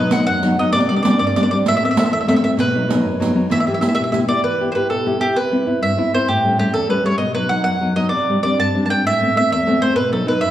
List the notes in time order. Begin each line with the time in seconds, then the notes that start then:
Already playing: B2 F#3 B3 B4
0.00 D#4
0.11 F#3 B3 D#4 F#5, riq
0.27 F#2 F#5
0.43 F#3 B3 D#4, riq
0.58 F#3 B3 D#4 D#5
0.72 C3 D5, riq
0.80 D5
0.89 G3 C4 D4 D5
0.96 D5
1.03 G3 C4 D4 D5, riq
1.10 D5
1.19 G2 D5
1.27 D5
1.36 G3 C4 D4 D5, riq
1.43 D5
1.51 G3 C4 D4 D5
1.66 A2 E5, riq
1.77 E5
1.83 A3 B3 C4 E5
1.91 E5
1.97 A3 B3 C4 E5, riq
2.06 E5
2.11 E2 E5
2.21 E5
2.28 A3 B3 C4 E5, riq
2.36 E5
2.42 A3 B3 C4 E5
2.57 B2 B4, riq
2.75 F#3 B3 D#4
2.88 F#3 B3 D#4, riq
3.03 F#2
3.20 F#3 B3 D#4, riq
3.35 F#3 B3 D#4
3.50 E3 E5, riq
3.60 E5
3.67 B3 E4 G4 E5
3.74 E5
3.80 B3 E4 G4 E5, riq
3.89 E5
3.95 B2 E5
4.04 E5
4.12 B3 E4 G4 E5, riq
4.27 B3 E4 G4 D5
4.43 E3 B4
4.60 B3 E4 G4
4.72 B3 B4 C5
4.76 E4 G4
4.90 B2 A4
5.06 B3 E4 G4
5.20 B3 E4 G4
5.36 C3 B4
5.52 B3 C4 E4
5.66 B3 C4 E4
5.81 G2 E5
5.97 B3 C4 E4
6.13 B3 C4 E4 C5
6.28 A2 G4
6.44 G3 A3 C#4
6.58 G3 A3 C#4 G4
6.72 E2 A4
6.89 G3 A3 C#4 B4
7.04 G3 A3 C#4 C#5
7.18 B2 D#5
7.34 F#3 B3 D#4 B4
7.49 F#3 B3 D#4 F#5
7.64 F#2 F#5
7.81 F#3 B3 D#4
7.96 F#3 B3 D#4 D#5
8.09 C3 D5
8.30 G3 C4 D4
8.43 G3 C4 D4 D5
8.58 G2 A5
8.75 G3 C4 D4
8.86 G3 C4 D4 A5
8.90 G5
9.04 A2 E5
9.21 A3 B3 C4
9.35 A3 B3 C4 E5
9.51 E2 E5
9.67 A3 B3 C4
9.81 A3 B3 C4 C5
9.95 B2 B4
10.12 F#3 B3 D#4 A4
10.26 F#3 B3 D#4 B4
10.41 F#2 E5